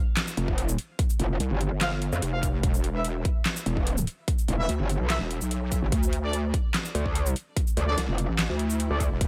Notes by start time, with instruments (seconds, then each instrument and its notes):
0.17 snare, clap, closed hi-hat
0.28 shaker
0.37 wobble bass F1, closed hi-hat
0.48 kick
0.58 closed hi-hat
0.69 shaker
0.78 closed hi-hat
0.99 kick, closed hi-hat
1.10 shaker
1.20 wobble bass F1, closed hi-hat
1.40 wobble bass C2, closed hi-hat
1.51 wobble bass G1
1.61 closed hi-hat
1.71 wobble bass G1
1.81 brass ensemble F4 C5 F5, snare, clap, closed hi-hat
2.02 closed hi-hat
2.12 wobble bass F2, shaker
2.22 wobble bass F1, closed hi-hat
2.33 brass ensemble F4 C5 F5
2.43 kick, closed hi-hat, shaker
2.63 wobble bass E1, kick, closed hi-hat
2.74 shaker
2.84 closed hi-hat
2.95 brass ensemble E4 B4 E5
3.04 closed hi-hat
3.25 kick, closed hi-hat
3.46 snare, clap, closed hi-hat
3.56 shaker
3.66 wobble bass E1, closed hi-hat
3.77 kick
3.87 closed hi-hat
3.97 shaker
4.07 closed hi-hat
4.28 kick, closed hi-hat
4.39 shaker
4.48 wobble bass E1, closed hi-hat
4.59 brass ensemble E4 B4 E5
4.69 wobble bass D2, closed hi-hat
4.80 wobble bass G1
4.89 closed hi-hat
5.00 wobble bass B1
5.10 brass ensemble E4 B4 E5, snare, clap, closed hi-hat
5.21 wobble bass E1
5.31 closed hi-hat
5.41 wobble bass B1, shaker
5.51 closed hi-hat
5.72 kick, closed hi-hat, shaker
5.82 wobble bass G1
5.92 wobble bass D2, kick, closed hi-hat
6.03 shaker
6.13 closed hi-hat
6.23 brass ensemble D4 A4 D5
6.33 closed hi-hat
6.54 kick, closed hi-hat
6.74 snare, clap, closed hi-hat
6.85 shaker
6.95 wobble bass D2, closed hi-hat
7.06 kick
7.15 closed hi-hat
7.26 shaker
7.36 closed hi-hat
7.57 kick, closed hi-hat
7.67 shaker
7.77 wobble bass D2, closed hi-hat
7.88 brass ensemble D4 A4 D5
7.98 wobble bass C2, snare, closed hi-hat
8.08 wobble bass F1
8.18 closed hi-hat
8.29 wobble bass A1
8.39 snare, clap, closed hi-hat, swell
8.50 wobble bass D2
8.59 closed hi-hat
8.70 shaker
8.80 closed hi-hat
8.91 wobble bass D2, brass ensemble D4 A4 D5
9.00 kick, closed hi-hat, shaker
9.11 wobble bass E1
9.21 wobble bass E1, supersaw synth E3 B3 G4, kick, closed hi-hat